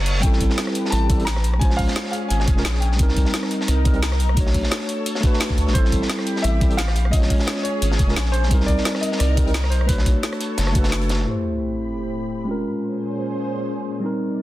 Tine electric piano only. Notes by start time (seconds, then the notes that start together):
0.20 G3 C4
0.25 E4 A4
1.08 G3 C4 E4 A4
1.17 G3 C4 E4 A4
1.58 G#3 C#4
1.63 F4 C5
2.56 G#3 C#4 F4 A#4
2.96 G3 C4
3.00 D#4 A#4
3.84 G3 C4 D#4 A#4
3.93 G3 C4 D#4 A#4
4.34 A3 D4
4.38 F#4 C#5
5.20 A3 D4
5.24 F#4 B4
5.72 G3 C4
5.76 E4 A4
6.60 G3 C4 E4 A4
6.69 G3 C4 E4 A4
7.10 G#3 C#4
7.14 F4 C#5
8.07 G#3 C#4 F4 A#4
8.48 G3 C4
8.52 D#4 A#4
9.36 G3 C4 D#4 A#4
9.45 G3 C4 D#4 A#4
9.86 A3 D4
9.90 F#4 C#5
10.72 A3 D4
10.76 F#4 B4
11.24 A3 E4
11.28 G4 C5
12.45 G#3 C#4
12.49 F4 A#4
14.00 G3 C4
14.04 D#4 A#4